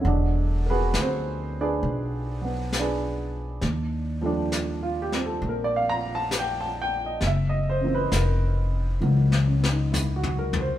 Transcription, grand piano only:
0.00 3.61 D3 medium
0.00 2.40 F#3 medium
0.00 0.64 E4 medium
0.00 0.64 C#5 medium
0.00 0.64 E5 medium
0.05 3.63 G#3 soft
0.05 1.59 D4 medium
0.66 0.68 A#4 medium
0.70 0.96 B3 medium
0.70 0.97 F#4 medium
0.70 0.96 G#4 medium
0.70 0.96 B4 medium
1.00 1.56 C4 medium
1.00 1.55 C5 medium
1.61 2.73 D4 medium
1.61 2.73 G#4 medium
1.61 2.73 B4 medium
1.61 2.73 D5 medium
2.41 3.62 F#3 soft
2.41 3.63 B3 soft
2.79 4.22 D4 medium
2.79 3.63 G#4 medium
2.79 3.63 B4 medium
2.79 4.22 D5 medium
4.21 7.21 F3 medium
4.21 5.10 G3 medium
4.21 7.22 A3 medium
4.26 7.23 D4 medium
4.83 5.12 F4 medium
5.02 5.21 G4 medium
5.12 7.22 G3 soft
5.12 7.23 C4 medium
5.26 5.41 A4 medium
5.49 5.65 A#4 medium
5.64 5.73 D5 medium
5.76 6.03 F5 medium
5.89 6.10 A#5 loud
6.15 6.30 A5 loud
6.39 6.65 G5 medium
6.61 6.90 A5 medium
6.82 7.01 G5 medium
7.06 7.21 D#5 medium
7.27 7.54 E5 medium
7.49 7.80 D#5 medium
7.70 7.90 C5 medium
7.81 10.79 C#3 medium
7.81 8.99 E3 soft
7.81 9.03 A#3 soft
7.87 10.79 C4 medium
7.95 8.10 B4 medium
8.16 9.61 A#4 medium
9.00 10.79 E3 soft
9.00 10.79 F#3 soft
9.00 10.79 A#3 soft
9.48 9.76 C#4 soft
9.71 10.03 D#4 soft
9.92 10.35 E4 medium
10.16 10.55 F#4 medium
10.39 10.67 A#4 medium
10.60 10.79 C5 medium

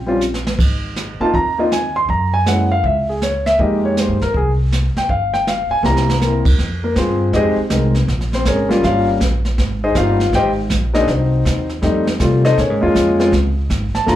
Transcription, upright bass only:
0.00 0.54 A#1 medium
0.59 1.16 G#1 medium
1.20 muted upright bass stroke soft
1.34 2.05 D#2 medium
2.09 2.80 F#2 medium
2.84 3.55 C#2 medium
3.59 4.05 F2 medium
4.08 4.20 G2 medium
4.21 4.33 D#2 medium
4.34 4.91 C2 medium
4.95 muted upright bass stroke soft
5.09 5.66 G1 medium
5.70 muted upright bass stroke soft
5.83 6.41 C2 medium
6.45 6.57 E2 medium
6.58 6.95 F2 medium
6.96 7.32 G2 medium
7.33 7.56 F2 medium
7.56 muted upright bass stroke soft
7.70 8.07 C2 medium
8.08 8.44 A#1 medium
8.45 8.82 G#1 medium
8.83 9.19 G1 medium
9.20 9.57 A#1 medium
9.58 9.94 G#1 medium
9.95 10.32 G1 medium
10.32 10.69 G#1 medium
10.70 11.06 A#1 medium
11.08 11.44 C2 medium
11.45 11.81 D#2 medium
11.82 12.19 F2 medium
12.20 12.56 C3 medium
12.58 12.70 A#2 medium
12.70 12.82 G#2 soft
12.82 12.94 F2 medium
12.95 13.31 F2 medium
13.32 13.68 C#2 medium
13.70 13.92 G#1 medium
13.93 muted upright bass stroke soft
14.07 14.16 G1 medium

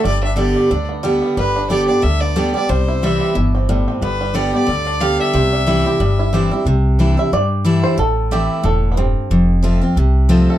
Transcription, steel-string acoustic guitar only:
0.05 0.68 G2 loud
0.36 0.68 D3 medium
0.36 0.69 G3 medium
0.36 0.69 B3 loud
0.36 0.69 G4 medium
0.71 1.02 D3 medium
1.03 1.35 D3 medium
1.03 1.35 G3 medium
1.03 1.36 B3 loud
1.03 1.36 G4 loud
1.37 2.00 G2 medium
1.70 1.88 D3 medium
1.70 1.88 G3 medium
1.70 1.88 B3 medium
1.70 1.87 G4 loud
1.88 2.03 B3 medium
1.88 2.03 G4 medium
2.02 2.35 D3 medium
2.36 2.54 D3 medium
2.36 2.54 G3 loud
2.36 2.54 B3 loud
2.36 2.53 G4 medium
2.54 2.69 B3 soft
2.54 2.68 G4 medium
2.69 3.32 C3 medium
3.02 3.34 E3 medium
3.02 3.34 G3 medium
3.02 3.35 C4 medium
3.02 3.35 E4 medium
3.35 3.67 B2 medium
3.69 4.00 A2 loud
4.02 4.65 G2 medium
4.34 4.52 D3 medium
4.34 4.52 G3 medium
4.34 4.53 B3 loud
4.34 4.52 G4 medium
4.53 4.68 B3 soft
4.53 4.67 G4 medium
4.67 4.99 D3 medium
5.00 5.32 D3 medium
5.00 5.32 G3 medium
5.00 5.33 B3 medium
5.00 5.33 G4 loud
5.34 5.97 C3 loud
5.67 5.84 E3 medium
5.67 5.85 G3 medium
5.67 5.85 C4 medium
5.67 5.85 E4 medium
5.86 6.00 C4 soft
5.86 6.00 E4 medium
6.00 6.63 G2 medium
6.33 6.50 E3 medium
6.33 6.51 G3 medium
6.33 6.51 C4 loud
6.33 6.50 E4 medium
6.51 6.66 C4 soft
6.51 6.65 E4 medium
6.67 7.29 C3 medium
6.99 7.17 E3 medium
6.99 7.17 G3 medium
6.99 7.17 D4 medium
6.99 7.16 E4 medium
7.17 7.32 D4 medium
7.17 7.31 E4 medium
7.33 7.96 G2 medium
7.65 7.96 E3 medium
7.65 7.97 G3 medium
7.65 7.97 D4 loud
7.65 7.97 E4 loud
7.98 8.61 A2 medium
8.31 8.63 E3 medium
8.31 8.63 A3 medium
8.31 8.63 C4 medium
8.31 8.64 E4 loud
8.63 8.95 A2 medium
8.97 9.29 G2 medium
9.31 9.94 F2 loud
9.63 9.81 F3 medium
9.63 9.81 A3 medium
9.63 9.81 C4 medium
9.63 9.80 F4 loud
9.81 9.96 C4 medium
9.81 9.96 F4 medium
9.97 10.58 C3 medium
10.29 10.58 F3 loud
10.29 10.58 A3 medium
10.29 10.58 C4 loud
10.29 10.58 F4 medium

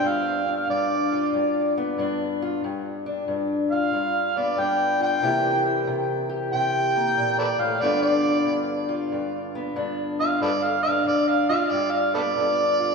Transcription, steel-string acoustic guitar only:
0.00 0.68 G2 medium
0.00 1.15 B3 medium
0.00 0.46 D4 medium
0.46 1.98 D4 medium
0.69 1.33 G2 medium
1.12 2.41 F4 medium
1.34 1.97 G2 medium
1.77 2.61 B3 medium
1.98 2.63 G2 medium
1.98 2.61 D4 medium
2.42 2.61 F4 medium
2.64 3.27 G2 medium
3.06 4.57 D4 medium
3.28 3.92 G2 medium
3.72 4.99 F4 medium
3.93 4.57 G2 medium
4.37 5.20 B3 medium
4.58 5.22 G2 medium
4.58 5.20 D4 medium
5.00 5.20 F4 medium
5.22 5.86 C3 medium
5.22 7.80 E3 medium
5.22 6.95 A#3 medium
5.22 5.65 E4 medium
5.22 6.29 G4 medium
5.66 7.80 E4 medium
5.87 6.52 C3 medium
6.29 7.84 G4 medium
6.53 7.16 C3 medium
6.96 7.80 A#3 medium
7.17 7.58 A#2 medium
7.58 7.81 A2 medium
7.81 8.46 G2 medium
7.81 12.95 D3 medium
7.81 9.54 B3 medium
7.81 8.24 D4 medium
7.81 8.88 F4 medium
8.24 9.75 D4 medium
8.46 9.12 G2 medium
8.89 10.19 F4 medium
9.12 9.75 G2 medium
9.55 10.39 B3 medium
9.76 10.41 G2 medium
9.76 10.39 D4 medium
10.20 10.39 F4 medium
10.42 11.06 G2 medium
10.86 12.37 D4 medium
11.07 11.71 G2 medium
11.50 12.79 F4 medium
11.72 12.36 G2 medium
12.15 12.95 B3 medium
12.37 12.95 G2 medium
12.37 12.95 D4 medium
12.80 12.95 F4 medium

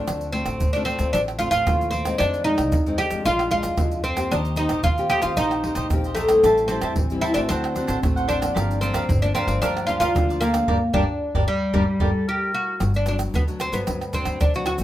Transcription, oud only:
0.00 0.30 D4 medium
0.32 0.73 C4 medium
0.73 0.85 D4 medium
0.85 1.13 C4 medium
1.13 1.20 D4 loud
1.39 1.50 F4 medium
1.51 1.90 F4 loud
1.91 2.17 C4 medium
2.18 2.44 D4 loud
2.44 2.98 D#4 medium
2.98 3.24 G4 loud
3.25 3.50 F4 loud
3.51 4.03 F4 medium
4.04 4.32 C4 medium
4.31 4.39 D4 medium
4.57 4.83 D#4 medium
4.84 5.09 F4 loud
5.10 5.22 G4 loud
5.22 5.37 F4 medium
5.37 6.13 D#4 loud
6.15 6.67 A3 medium
6.68 7.24 C4 medium
7.21 7.34 E4 loud
7.34 7.39 D4 medium
7.49 8.31 C4 loud
8.29 8.78 D4 medium
8.81 9.22 C4 medium
9.22 9.34 D4 medium
9.35 9.60 C4 medium
9.62 9.86 D4 loud
9.87 9.99 F4 medium
10.00 10.42 F4 loud
10.41 10.91 A#3 medium
10.94 11.49 D4 medium
11.48 12.24 G3 medium
12.29 12.53 G4 medium
12.54 12.91 F#4 medium
12.96 13.07 D4 medium
13.08 13.15 D4 medium
13.35 13.42 B3 medium
13.61 13.74 C4 medium
13.74 14.15 B3 medium
14.14 14.39 C4 medium
14.41 14.53 D4 medium
14.56 14.65 F#4 medium
14.66 14.84 F#4 medium

